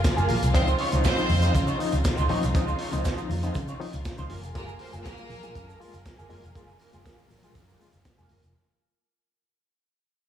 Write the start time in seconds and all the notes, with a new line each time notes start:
Already playing: F#3 F4 G#4 A#4
0.04 F#3, muted clean electric guitar stroke, kick, snare, closed hi-hat, shaker
0.17 F#1 G#3 A#3 F4 G#4, shaker
0.28 A#1 A#3 F4 A#4, open hi-hat, high conga, low conga, shaker
0.42 C2, muted clean electric guitar stroke, closed hi-hat, shaker
0.54 C#2 C#3 F3 C4 D#4 F4 C5, kick, closed hi-hat, shaker
0.68 shaker
0.78 C#3 C#4 D#4 F4 C#5, open hi-hat
0.92 C#2 F3 C4 D#4 F4 C5, closed hi-hat, high conga, shaker
1.04 C4 D#4 F4 C5, kick, snare, closed hi-hat, muted conga, shaker
1.17 F3 C4 D#4, muted clean electric guitar stroke, shaker
1.29 F2 C#3, muted clean electric guitar stroke, open hi-hat, muted conga, high conga, low conga
1.42 F3 C4 D#4 F4 C5, closed hi-hat, shaker
1.55 C#3, kick, closed hi-hat, low conga, shaker
1.67 D#4 F4 C#5, shaker
1.79 F3 C4 D#4, muted clean electric guitar stroke, open hi-hat, muted conga
1.92 C#2, muted clean electric guitar stroke, closed hi-hat, shaker
2.04 muted clean electric guitar stroke, kick, snare, closed hi-hat, muted conga, shaker
2.17 C#2 D#4 F4 C5, shaker
2.28 A#1 F3 C4 D#4 F4 C#5, open hi-hat, high conga, low conga
2.42 C2, muted clean electric guitar stroke, closed hi-hat, shaker
2.54 C#2 F3 C4 D#4 F4 C5, kick, closed hi-hat, shaker
2.68 shaker
2.78 C#3 D#4 F4 C#5, open hi-hat
2.92 C#2 F3 C4 D#4 F4 C5, closed hi-hat, high conga, shaker
3.04 D#4 F4 C5, kick, snare, closed hi-hat, muted conga, shaker
3.18 F3 C4 D#4, muted clean electric guitar stroke, shaker
3.30 F2 C#3, muted clean electric guitar stroke, open hi-hat, muted conga, high conga, low conga
3.43 F3 C4 D#4 F4 C5, closed hi-hat, shaker
3.54 C#3, muted clean electric guitar stroke, kick, closed hi-hat, muted conga, low conga, shaker
3.68 D#4 F4 C#5, shaker
3.80 F3 C4 D#4, muted clean electric guitar stroke, open hi-hat
3.93 C#2, muted clean electric guitar stroke, closed hi-hat, shaker
4.05 C#3, muted clean electric guitar stroke, kick, snare, closed hi-hat, shaker
4.18 C#2 F3 C4 D#4 F4 C5, shaker
4.29 F#1 F#3 A#3 F4 G#4 A#4, open hi-hat, high conga, low conga
4.43 F1, muted clean electric guitar stroke, closed hi-hat, shaker
4.55 F#1 G#3 A#3 F4 G#4 A#4, kick, closed hi-hat, shaker
4.68 shaker
4.79 F#3 A#3 C4 F4 A#4 C5, open hi-hat, muted conga
4.92 F#1 G#3 A#3 F4 G#4, closed hi-hat, high conga, shaker
5.04 A#3 F4 G#4 A#4, kick, snare, closed hi-hat, shaker
5.17 G#3 A#3 F4, muted clean electric guitar stroke, shaker
5.30 A#1 F#3, muted clean electric guitar stroke, open hi-hat, high conga, low conga
5.43 G#3 A#3 F4 G#4, closed hi-hat, shaker
5.55 F#2, muted clean electric guitar stroke, kick, closed hi-hat, muted conga, low conga, shaker
5.68 A#3 F4 A#4, shaker
5.80 G#3 A#3 F4, muted clean electric guitar stroke, open hi-hat, muted conga
5.93 F#1, muted clean electric guitar stroke, closed hi-hat, shaker
6.06 muted clean electric guitar stroke, kick, snare, closed hi-hat, muted conga, shaker
6.18 F#1 A#3 F4 G#4, shaker
6.30 F#1 G#3 A#3 F4 A#4, open hi-hat, muted conga, high conga, low conga
6.43 F1, muted clean electric guitar stroke, closed hi-hat, shaker
6.55 F#1 G#3 A#3 F4 G#4, kick, closed hi-hat, shaker
6.69 shaker
6.79 F#3 A#3 F4 A#4, open hi-hat, shaker
6.93 F#1 G#3 A#3 F4 G#4, closed hi-hat, high conga, shaker
7.05 A#3 F4 G#4, kick, snare, closed hi-hat, shaker
7.17 G#3 A#3 F4, muted clean electric guitar stroke, shaker
7.29 A#1 F#3, muted clean electric guitar stroke, open hi-hat, muted conga, high conga, low conga, shaker
7.43 G#3 A#3 F4 G#4, closed hi-hat, shaker
7.55 F#2, muted clean electric guitar stroke, kick, closed hi-hat, muted conga, low conga, shaker
7.68 A#3 F4 A#4, shaker
7.79 G#3 A#3 F4, muted clean electric guitar stroke, open hi-hat, muted conga, shaker
7.92 F#1, muted clean electric guitar stroke, closed hi-hat, shaker
8.05 F#3, muted clean electric guitar stroke, kick, snare, closed hi-hat, shaker
8.18 F1 G#3 A#3 F4 G#4, shaker
8.29 F#1 A#3 F4 A#4, open hi-hat, muted conga, high conga, low conga, shaker
8.43 F1, muted clean electric guitar stroke, closed hi-hat, shaker